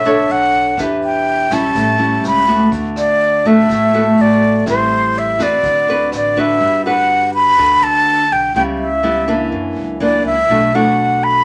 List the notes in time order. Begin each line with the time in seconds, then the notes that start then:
Already playing: B1 B3 E5
0.05 D4 A4 C#5, closed hi-hat
0.29 B1 F#5, closed hi-hat
0.53 kick, closed hi-hat
0.77 E2 E3 D4 G4 B4, kick, cross-stick, closed hi-hat
1.02 G5, closed hi-hat
1.26 closed hi-hat
1.50 B1 G3 C#4 E4 A5, kick, cross-stick, closed hi-hat
1.74 A1 A2, kick, closed hi-hat
1.98 G3 C#4 E4, closed hi-hat
2.24 C#2 B5, cross-stick, closed hi-hat
2.47 A3 B3 F#4, kick, closed hi-hat
2.72 D2 D3, kick, closed hi-hat
2.96 D5, cross-stick, closed hi-hat
3.21 closed hi-hat
3.45 A1 A3 B3 F#4 E5, kick, closed hi-hat
3.69 A1 A2, kick, cross-stick, closed hi-hat
3.93 A3 B3 F#4, closed hi-hat
4.17 A1 D5, closed hi-hat
4.42 kick, closed hi-hat
4.66 A1 A2 G3 C4 E4 C5, kick, cross-stick, closed hi-hat
4.90 closed hi-hat
5.14 closed hi-hat
5.18 E5
5.38 E2 C4 F#4 B4, kick, cross-stick, closed hi-hat
5.43 D5
5.63 D2 D3, kick, closed hi-hat
5.88 C4 F#4 B4, closed hi-hat
6.12 A1 D5, cross-stick, closed hi-hat
6.36 D4 F#4 B4 E5, kick, closed hi-hat
6.61 G1 G3
6.86 D4 F#4 B4 F#5
7.34 B5
7.57 D2 D3 D4 F#4 B4
7.81 D2 A5
8.31 B1 G5
8.54 C#2 C#3 G3 B3 E4 G5
8.80 E5
9.03 G3 B3 E4
9.28 E3 A#3 D4
9.52 F#2
9.76 C#2
10.00 E3 A#3 D4 D5
10.24 C#2 E5
10.49 B1 B2 A3 D4 F#4
10.74 A3 D4 F#4 F#5
11.24 B5